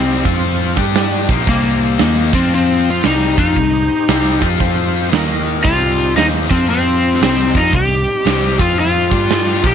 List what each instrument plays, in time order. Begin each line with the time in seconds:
Already playing: picked electric bass C2, distorted electric guitar C3 G3 C4, tonewheel organ G3 C4 D#4, electric slide guitar C4
0.24 picked electric bass F2, tonewheel organ F3 C4 F4, distorted electric guitar F3 C4 F4, kick
0.44 open hi-hat
0.75 picked electric bass G2, tonewheel organ G3 D4 G4, distorted electric guitar G3 D4 G4, kick
0.95 snare, open hi-hat
1.29 picked electric bass A#1, distorted electric guitar A#2 F3 A#3, tonewheel organ C4 D#4 G4, kick
1.47 picked electric bass C2, distorted electric guitar C3 G3 C4, electric slide guitar A#3, kick, open hi-hat
1.98 picked electric bass D#2, distorted electric guitar D#3 A#3 D#4, snare, open hi-hat
2.33 picked electric bass F2, distorted electric guitar F3 C4 F4, tonewheel organ C4 F4 C5, electric slide guitar C4, kick
2.50 open hi-hat
2.55 electric slide guitar C4
2.90 electric slide guitar F4
3.03 picked electric bass C2, distorted electric guitar C3 G3 C4, tonewheel organ D#4 G4, snare, open hi-hat
3.07 electric slide guitar D#4
3.38 picked electric bass F2, distorted electric guitar F3 C4 F4, electric slide guitar D#4, kick
3.55 picked electric bass C2, distorted electric guitar C3 G3, kick, open hi-hat
4.08 picked electric bass C2, distorted electric guitar C3 G3 C4, snare, open hi-hat
4.41 picked electric bass F2, distorted electric guitar F3 C4 F4, kick
4.59 picked electric bass F2, distorted electric guitar F3 C4 F4, tonewheel organ C4 F4 C5, kick, open hi-hat
5.10 picked electric bass D#2, distorted electric guitar D#3 A#3 D#4, tonewheel organ A#3 D#4 A#4, snare, open hi-hat
5.62 picked electric bass C2, distorted electric guitar C3 G3 C4, tonewheel organ D#4 G4, electric slide guitar F4, kick, open hi-hat
5.67 tonewheel organ C4
6.16 picked electric bass D#2, distorted electric guitar D#3 A#3 D#4, electric slide guitar D#4, snare, open hi-hat
6.49 picked electric bass F2, distorted electric guitar F3 C4 F4, tonewheel organ F3 C4 F4, electric slide guitar C4, kick
6.69 electric slide guitar C4, open hi-hat
7.14 snare
7.21 picked electric bass C2, distorted electric guitar C3 G3 C4, tonewheel organ G3 C4 D#4, electric slide guitar C4, snare, open hi-hat
7.54 picked electric bass F2, distorted electric guitar F3 C4 F4, electric slide guitar D#4, kick
7.73 picked electric bass C2, distorted electric guitar C3 G3, electric slide guitar G4, kick, open hi-hat
8.25 picked electric bass C2, distorted electric guitar C3 G3 C4, snare, open hi-hat
8.58 picked electric bass F2, distorted electric guitar F3 C4 F4, tonewheel organ F3 C4 F4, electric slide guitar F4, kick
8.78 electric slide guitar F4, open hi-hat
9.10 picked electric bass G2, tonewheel organ G3 D4 G4, distorted electric guitar G3 D4 G4, kick
9.30 snare, open hi-hat
9.61 picked electric bass A#1, distorted electric guitar A#2 F3 A#3, tonewheel organ G3 C4 D#4, kick
9.66 electric slide guitar G4